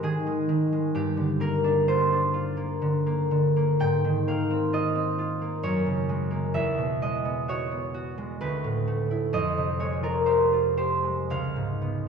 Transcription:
0.00 0.99 G#2 soft
0.00 0.48 D#3 soft
0.00 0.26 G#3 soft
0.00 0.99 C4 soft
0.00 0.94 G4 soft
0.00 0.99 G#4 medium
0.00 0.69 A#4 medium
0.00 1.00 C5 medium
0.00 0.99 D#5 medium
0.27 0.71 G#3 soft
0.49 0.98 D#3 soft
0.73 0.99 G#3 soft
0.95 3.83 G2 medium
0.95 3.83 G4 medium
1.17 2.81 D3 soft
1.40 2.56 A#3 soft
1.40 5.31 A#4 medium
1.64 2.11 D4 soft
1.88 2.33 F4 soft
1.88 5.67 C5 medium
2.12 3.84 D4 soft
2.34 4.72 F4 soft
2.57 3.05 A#3 soft
2.82 3.30 D3 soft
3.06 3.55 A#3 soft
3.31 3.84 D3 soft
3.56 4.26 A#3 soft
3.80 5.67 G#2 medium
3.80 4.58 G5 medium
4.05 5.67 D#3 soft
4.28 5.40 A#3 soft
4.28 5.67 F5 medium
4.51 4.94 C4 soft
4.73 5.17 F4 soft
4.73 6.58 D#5 medium
4.95 5.67 C4 soft
5.18 5.67 F4 soft
5.42 6.29 A#3 soft
5.63 6.57 F#2 soft
5.63 7.48 C#5 medium
5.87 6.58 C#3 soft
6.09 7.01 G#3 soft
6.31 6.57 A#3 soft
6.54 8.44 E2 medium
6.54 9.36 E5 medium
6.78 8.44 B2 soft
7.02 8.17 G#3 soft
7.02 7.81 D#5 medium
7.25 7.70 B3 soft
7.48 7.93 F#4 soft
7.48 8.45 C#5 medium
7.72 9.36 B3 soft
7.94 9.36 F#4 soft
8.18 8.44 G#3 soft
8.41 9.36 D2 soft
8.41 9.36 B4 medium
8.64 9.36 A2 soft
8.87 9.36 A3 soft
9.11 9.36 E4 soft
9.33 11.34 F2 medium
9.33 12.08 D#5 medium
9.57 11.35 C3 soft
9.79 11.03 G#3 soft
9.79 10.19 C#5 medium
10.03 10.52 F4 soft
10.03 10.44 A#4 medium
10.26 10.76 G4 soft
10.26 10.76 C5 medium
10.53 12.08 F4 soft
10.77 11.34 G4 soft
10.77 11.34 C5 medium
11.04 12.08 G#3 soft
11.30 12.08 C#2 soft
11.30 12.08 F5 medium
11.56 12.08 G#2 soft
11.82 12.08 B3 soft

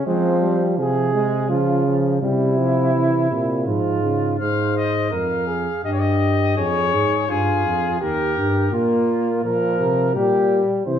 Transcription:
0.06 0.80 F3 loud
0.06 0.43 G#3 medium
0.06 0.62 C4 medium
0.42 0.77 G3 medium
0.78 1.52 C3 medium
0.78 1.13 F3 medium
0.78 1.49 G#4 medium
1.14 1.51 G#3 medium
1.49 2.21 C#3 loud
1.49 1.85 F3 medium
1.49 1.96 F4 medium
1.86 2.21 F3 medium
2.22 3.28 C3 medium
2.22 2.60 G3 medium
2.22 3.63 E4 medium
2.59 2.94 F3 medium
2.95 3.30 E3 medium
3.30 3.68 A#2 medium
3.30 3.68 C3 medium
3.66 4.40 G#2 medium
3.66 4.02 F3 medium
3.66 4.38 F4 medium
4.03 4.39 C#3 medium
4.39 5.09 G#2 medium
4.39 5.08 C5 medium
4.39 4.73 F5 medium
4.77 5.12 D#5 medium
5.11 5.68 F2 medium
5.11 5.46 A#4 medium
5.11 5.84 F5 medium
5.47 5.83 G#4 medium
5.84 6.56 G2 medium
5.84 6.56 G4 medium
5.84 5.94 D#5 medium
5.92 6.01 C#5 soft
5.99 6.57 D#5 medium
6.57 6.95 F2 medium
6.57 7.28 G#4 medium
6.57 7.31 C#5 medium
6.93 7.29 G#2 medium
7.28 7.65 G2 medium
7.28 7.99 F4 medium
7.28 8.01 G#4 medium
7.66 8.01 F2 medium
8.01 8.39 D#2 medium
8.01 8.75 G4 medium
8.01 8.72 A#4 medium
8.37 8.72 G2 medium
8.72 9.43 A#2 medium
8.72 9.41 A#3 medium
8.72 9.44 F4 medium
9.44 9.82 A#2 medium
9.44 10.17 F3 medium
9.44 10.15 A#4 medium
9.80 10.15 C3 medium
10.15 10.61 A#2 medium
10.15 10.86 G3 medium
10.15 10.61 G4 medium
10.86 10.99 C3 medium
10.86 10.99 E3 medium
10.86 10.99 C5 medium

